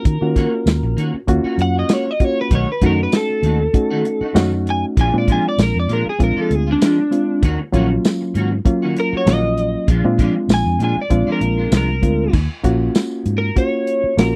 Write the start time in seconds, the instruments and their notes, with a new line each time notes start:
Already playing: reed electric piano A#3 C#4 F4 F#4, clean electric guitar A#4
0.05 fingered electric bass D#3, kick, closed hi-hat
0.21 fingered electric bass D#3, reed electric piano A#3 C#4 F4 F#4, muted clean electric guitar stroke
0.36 clean electric guitar A#3 C#4 F#4, kick, snare, closed hi-hat
0.53 muted clean electric guitar stroke
0.66 fingered electric bass D#2, snare, closed hi-hat, tambourine
0.83 fingered electric bass A#1, muted clean electric guitar stroke
0.97 fingered electric bass D#3, clean electric guitar A#3 C#4 F#4, closed hi-hat
1.14 muted fingered electric bass stroke, muted clean electric guitar stroke
1.27 fingered electric bass D#2, reed electric piano A#3 C#4 F4 F#4, muted clean electric guitar stroke, kick, closed hi-hat
1.44 clean electric guitar A#3 C#4 F#4, muted fingered electric bass stroke
1.58 fingered electric bass F#2, clean electric guitar F#5, muted clean electric guitar stroke, closed hi-hat
1.75 clean electric guitar C#4 F#4
1.79 clean electric guitar D#5
1.89 clean electric guitar A#3 C#4 F#4, snare, closed hi-hat, tambourine
1.93 clean electric guitar C#5
2.06 muted clean electric guitar stroke
2.11 clean electric guitar D#5
2.20 reed electric piano A#3 C#4 F4 F#4, muted clean electric guitar stroke, kick, closed hi-hat
2.24 clean electric guitar C#5
2.41 clean electric guitar B4
2.51 fingered electric bass B1, clean electric guitar D#3 A3 D#4 F#4, kick, closed hi-hat
2.55 clean electric guitar C#5
2.68 muted clean electric guitar stroke
2.72 clean electric guitar B4
2.81 fingered electric bass F#2, clean electric guitar D#3 A3 D#4 F#4, reed electric piano A3 C#4 D#4 F#4, kick, closed hi-hat
2.86 clean electric guitar A#4
2.98 muted clean electric guitar stroke
3.03 clean electric guitar B4
3.12 snare, closed hi-hat, tambourine
3.16 clean electric guitar A4
3.29 muted clean electric guitar stroke
3.43 fingered electric bass D#2, clean electric guitar D#3 A3 D#4 F#4, closed hi-hat
3.60 muted clean electric guitar stroke
3.74 reed electric piano A3 C#4 D#4 F#4, muted clean electric guitar stroke, kick, closed hi-hat
3.90 clean electric guitar D#3 A3 D#4 F#4
4.05 muted clean electric guitar stroke, closed hi-hat
4.21 clean electric guitar A3 D#4 F#4, muted fingered electric bass stroke
4.34 fingered electric bass F#2, clean electric guitar D#3 A3 D#4 F#4, reed electric piano A3 C#4 D#4 F#4, snare, closed hi-hat, tambourine
4.52 muted clean electric guitar stroke
4.66 muted clean electric guitar stroke, closed hi-hat
4.70 clean electric guitar G#5
4.97 fingered electric bass A#1, clean electric guitar F3 G#3 D4 F4, kick, closed hi-hat
5.01 clean electric guitar G#5
5.13 fingered electric bass A#2, reed electric piano G#3 C4 D4 F4, muted clean electric guitar stroke
5.18 clean electric guitar D5
5.28 clean electric guitar F3 G#3 D4 F4, kick, closed hi-hat
5.32 clean electric guitar G#5
5.45 clean electric guitar D5, muted clean electric guitar stroke
5.58 fingered electric bass A#1, snare, closed hi-hat, tambourine
5.63 clean electric guitar A#4
5.75 fingered electric bass F2, muted clean electric guitar stroke
5.80 clean electric guitar D5
5.89 fingered electric bass A#2, clean electric guitar F3 G#3 D4 F4, closed hi-hat
5.93 clean electric guitar A#4
6.06 clean electric guitar G#4, muted fingered electric bass stroke, muted clean electric guitar stroke
6.19 fingered electric bass A#1, reed electric piano G#3 C4 D4 F4, muted clean electric guitar stroke, kick, closed hi-hat
6.24 clean electric guitar A#4
6.37 clean electric guitar F3 G#3 D4 F4 A4
6.50 fingered electric bass D2, muted clean electric guitar stroke, closed hi-hat
6.55 clean electric guitar G#4
6.67 clean electric guitar G#3 D4 F4
6.72 clean electric guitar D4
6.81 clean electric guitar F3 G#3 D4 F4, snare, closed hi-hat, tambourine
6.86 clean electric guitar D4
6.98 muted clean electric guitar stroke
7.11 reed electric piano G#3 C4 D4 F4, muted clean electric guitar stroke, closed hi-hat
7.42 fingered electric bass D#2, clean electric guitar D#3 A#3 C#4 F#4, kick, closed hi-hat
7.60 muted clean electric guitar stroke
7.72 fingered electric bass A#1, clean electric guitar D#3 A#3 C#4 F#4, reed electric piano F#3 A#3 C#4 F4, kick, closed hi-hat
7.91 muted clean electric guitar stroke
8.05 snare, closed hi-hat, tambourine
8.21 muted clean electric guitar stroke
8.34 fingered electric bass G#2, clean electric guitar D#3 A#3 C#4 F#4, closed hi-hat
8.51 muted clean electric guitar stroke
8.65 reed electric piano F#3 A#3 C#4 F4, muted clean electric guitar stroke, kick, closed hi-hat
8.82 clean electric guitar D#3 A#3 C#4 F#4
8.96 clean electric guitar A#4, muted clean electric guitar stroke, closed hi-hat
9.12 clean electric guitar A#3 C#4 F#4, muted fingered electric bass stroke
9.17 clean electric guitar C#5
9.26 fingered electric bass A#1, clean electric guitar D#3 A#3 C#4 F#4, reed electric piano F#3 A#3 C#4 F4, snare, closed hi-hat, tambourine
9.30 clean electric guitar D#5
9.44 muted clean electric guitar stroke
9.57 muted clean electric guitar stroke, closed hi-hat
9.87 fingered electric bass A#1, clean electric guitar F3 G#3 D4 F4, kick, closed hi-hat
10.04 fingered electric bass A#2, reed electric piano G#3 C4 D4 F4, muted clean electric guitar stroke
10.18 clean electric guitar F3 G#3 D4 F4, kick, snare, closed hi-hat
10.35 muted clean electric guitar stroke
10.49 fingered electric bass A#1, snare, closed hi-hat, tambourine
10.54 clean electric guitar G#5
10.65 fingered electric bass F2, muted clean electric guitar stroke
10.79 fingered electric bass A#2, clean electric guitar F3 G#3 D4 F4, closed hi-hat
10.84 clean electric guitar G#5
10.96 muted fingered electric bass stroke, muted clean electric guitar stroke
11.01 clean electric guitar D5
11.10 fingered electric bass A#1, reed electric piano G#3 C4 D4 F4, muted clean electric guitar stroke, kick, closed hi-hat
11.27 clean electric guitar F3 G#3 D4 F4
11.32 clean electric guitar A#4
11.41 fingered electric bass A#1, muted clean electric guitar stroke, closed hi-hat
11.58 clean electric guitar G#3 D4 F4
11.71 fingered electric bass C2, clean electric guitar F3 G#3 D4 F4, snare, closed hi-hat, tambourine
11.77 clean electric guitar A#4
11.89 muted clean electric guitar stroke
12.02 fingered electric bass D2, reed electric piano G#3 C4 D4 F4, muted clean electric guitar stroke, kick, closed hi-hat
12.33 fingered electric bass D#2, kick, crash
12.63 fingered electric bass A#1, reed electric piano A#3 C#4 F4 F#4, kick, closed hi-hat
12.95 snare, closed hi-hat, tambourine
13.26 fingered electric bass G#2, closed hi-hat
13.38 clean electric guitar A#4
13.55 reed electric piano A#3 C#4 F4 F#4, clean electric guitar C#5, kick, closed hi-hat
13.87 closed hi-hat
14.04 muted fingered electric bass stroke
14.17 fingered electric bass A#1, reed electric piano A#3 C#4 F4 F#4, clean electric guitar A#4, snare, closed hi-hat, tambourine